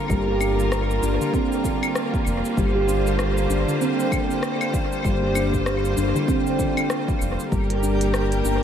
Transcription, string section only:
Already playing: D3 G3 A#3 F4 A#4
2.57 C5
7.52 A#3 G4 A#4

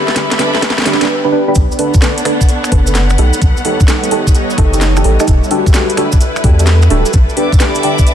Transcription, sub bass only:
1.56 B1
2.72 F#1
3.18 B1
3.42 B1
4.58 F#1
5.04 A1
5.28 E1
6.44 E2
6.90 D1
7.14 A1

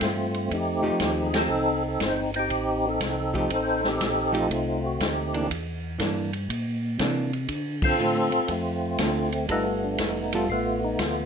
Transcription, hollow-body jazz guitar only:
0.83 F3 A3 D#4 G4
1.33 F3 A3 D#4 G4
3.34 F3 A3 D#4 G4
4.32 F3 A3 D#4 G4
5.33 E3 A#3 D4
5.99 E3 A#3 D4
6.99 E3 A#3 D4
7.98 D3 A3 C4 F4
8.99 D3 A3 C4 F4
9.49 G3 B3 F4 A4
10.34 G3 B3 F4 A4

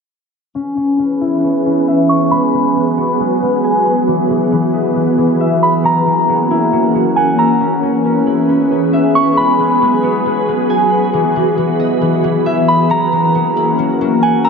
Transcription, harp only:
0.55 C#4
0.77 C#4
0.99 C#4
1.21 E4
1.44 C#4
1.66 C#4
1.88 E5
2.09 B5
2.31 G#3
2.53 G#3
2.76 G#3
2.97 B3
3.20 G#3
3.42 G#3
3.64 G#5
3.86 B5
4.07 E3
4.30 E3
4.52 E3
4.74 D#5
4.96 E3
5.18 E3
5.40 E5
5.62 D#6
5.84 F#3
6.06 F#3
6.29 F#3
6.51 E4
6.73 F#3
6.95 F#3
7.17 F#5
7.38 E6
7.61 C#4
7.83 C#4
8.05 C#4
8.27 E4
8.50 C#4
8.71 C#4
8.93 E5
9.15 B5
9.37 G#3
9.59 G#3
9.81 G#3
10.03 B3
10.26 G#3
10.48 G#3
10.70 G#5
10.91 B5
11.13 E3
11.36 E3
11.58 E3
11.80 D#5
12.01 E3
12.24 E3
12.46 E5
12.68 D#6
12.90 F#3
13.12 F#3
13.35 F#3
13.57 E4
13.79 F#3
14.01 F#3
14.23 F#5
14.45 E6

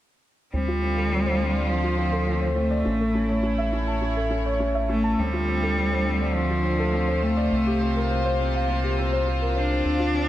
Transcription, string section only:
0.52 D3
0.65 A3
0.86 F4
1.34 C5
2.85 A2
3.05 E4
3.36 C#5
5.19 D3
6.08 F4
6.23 C5
7.51 C3
7.98 A#2
9.85 D3
10.12 A3

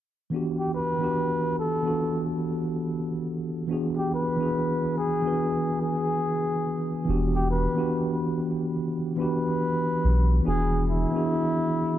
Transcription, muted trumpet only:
0.59 G4
0.75 B4
1.60 A4
3.97 G4
4.15 B4
4.98 G#4
5.82 G#4
7.35 G4
7.51 B4
9.19 B4
10.47 G#4
10.91 E4

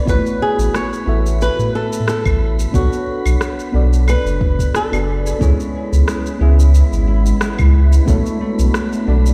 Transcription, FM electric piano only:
0.05 A3 B3 E4 F#4 C#5
1.06 B3 E4 F#4 A4 E5
2.72 B3 D4 F#4 A4 C#5
3.72 B3 D4 F#4 A4 D5
4.92 B3 D4 F#4 A4 D5
5.39 B3 C#4 E4 G#4 C#5
6.39 B3 C#4 E4 G#4 E5
8.05 B3 D4 F#4 A4 C#5
9.05 B3 D4 F#4 A4 D5

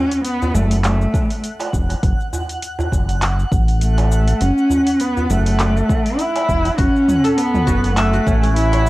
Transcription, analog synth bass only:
0.54 F#1
1.73 E1
2.03 F#1
2.92 F#1
3.52 A1
4.41 F#1
5.30 F#1
6.49 E1
6.78 F#1
7.67 F#1
8.27 A1

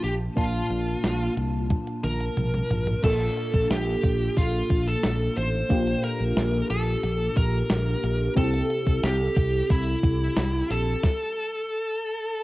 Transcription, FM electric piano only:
Already playing: F3 A#3 D4 A5
0.36 A#2 A#3 D4 F4 A5
3.02 A#2 A#3 D4 F4 A4
5.69 A#2 A#3 D4 F4 G4
8.36 C3 C4 E4 G4 A4

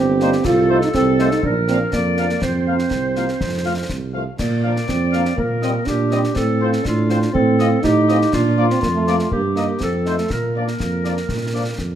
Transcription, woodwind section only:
Already playing: G4
0.45 A4
0.94 A4
1.45 A#4
1.93 D5
2.43 C5
4.39 D5
5.38 A#4
5.87 G4
6.37 A4
6.85 F4
7.34 A4
7.83 G4
8.33 F4
9.32 G4
9.82 A4
10.31 A#4

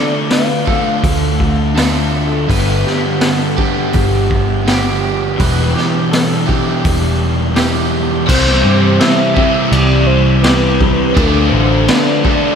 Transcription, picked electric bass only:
1.04 D2
2.50 G1
3.95 G1
5.40 E1
6.85 E1
8.29 C2
8.65 G2
9.72 C2
11.17 D2
11.53 A1

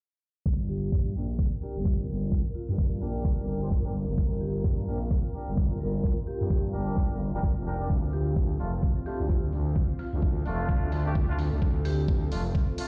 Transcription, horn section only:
1.15 D4 G4 A#4
1.62 D4 G4 A#4
3.01 D4 G4 A#4
3.48 D4 G4 A#4
3.62 D4 G4 C5
3.85 D4 G4 A#4
4.87 D4 G4 A#4
5.34 D4 G4 A#4
6.73 D4 G4 A#4
7.34 D4 G4 A#4
7.66 D4 G4 A#4
7.80 D4 G4 D5
8.60 A3 D4 F4
9.06 A3 D4 F4
10.46 A3 D4 F4
10.92 A3 D4 F4
11.06 A3 D4 G4
11.29 A3 D4 F4
12.32 A3 D4 F4
12.78 A3 D4 F4

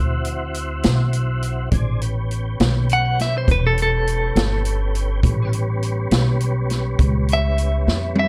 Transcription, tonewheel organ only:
Already playing: C4 E4 F#4
1.71 C4 D4 G#4
2.01 B3 C#4 G4
5.23 G3 B3 C#4

